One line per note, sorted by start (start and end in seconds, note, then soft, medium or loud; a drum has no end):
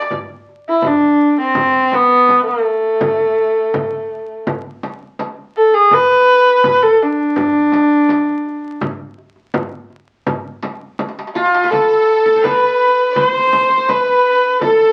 0.00 0.10 D5 medium
0.00 0.35 D5 medium
0.00 darbuka ka medium
0.11 frame drum medium
0.11 darbuka dum medium
0.49 darbuka ka soft
0.69 0.89 E4 medium
0.82 frame drum medium
0.82 darbuka dum medium
0.87 1.39 D4 medium
1.40 1.96 C4 medium
1.55 frame drum medium
1.55 darbuka dum medium
1.92 2.46 B3 medium
1.92 darbuka tek medium
1.92 frame drum medium
2.29 darbuka tek medium
2.29 frame drum medium
2.46 4.49 A3 medium
2.66 darbuka ka soft
2.83 darbuka ka soft
3.01 frame drum medium
3.01 darbuka dum medium
3.38 darbuka ka soft
3.74 frame drum loud
3.74 darbuka dum medium
4.47 frame drum loud
4.47 darbuka dum medium
4.83 darbuka tek medium
4.83 frame drum medium
5.19 darbuka tek medium
5.19 frame drum medium
5.57 5.75 A4 medium
5.57 darbuka ka soft
5.73 5.95 G#4 medium
5.73 darbuka ka soft
5.91 6.84 B4 loud
5.91 frame drum medium
5.91 darbuka dum medium
6.29 darbuka ka soft
6.64 frame drum medium
6.64 darbuka dum medium
6.82 7.04 A4 medium
7.02 8.76 D4 medium
7.36 frame drum medium
7.36 darbuka dum medium
7.72 darbuka tek medium
7.72 frame drum medium
8.09 darbuka tek medium
8.09 frame drum medium
8.46 darbuka ka soft
8.64 darbuka ka soft
8.81 frame drum medium
8.81 darbuka dum loud
9.18 darbuka ka soft
9.36 darbuka ka soft
9.54 frame drum loud
9.54 darbuka dum medium
9.90 darbuka ka soft
10.27 frame drum loud
10.27 darbuka dum medium
10.63 darbuka tek medium
10.63 frame drum medium
10.99 darbuka tek medium
10.99 frame drum medium
11.09 darbuka ka medium
11.19 darbuka tek medium
11.27 darbuka ka medium
11.35 12.69 F4 medium
11.35 11.69 F4 medium
11.35 11.72 F4 medium
11.35 darbuka tek medium
11.45 darbuka ka medium
11.54 darbuka tek medium
11.64 12.42 B4 medium
11.64 darbuka ka medium
11.70 12.46 A4 medium
11.70 12.25 A4 medium
11.70 12.45 A4 medium
11.70 frame drum medium
12.26 13.43 A4 medium
12.36 12.50 C5 medium
12.44 13.22 B4 medium
12.44 13.10 B4 medium
12.44 13.18 B4 medium
12.44 frame drum medium
13.12 13.23 C5 medium
13.12 13.18 D5 medium
13.12 frame drum medium
13.16 13.91 C5 medium
13.16 13.90 C5 medium
13.23 13.32 C5 medium
13.33 13.39 C5 medium
13.39 13.47 C5 medium
13.47 13.55 C5 medium
13.53 13.61 C5 soft
13.53 frame drum medium
13.61 13.69 C5 medium
13.69 13.77 C5 medium
13.78 13.95 C5 medium
13.89 14.92 B4 medium
13.89 14.62 B4 medium
13.89 14.61 B4 medium
13.89 frame drum medium
14.61 14.92 A4 medium
14.61 frame drum medium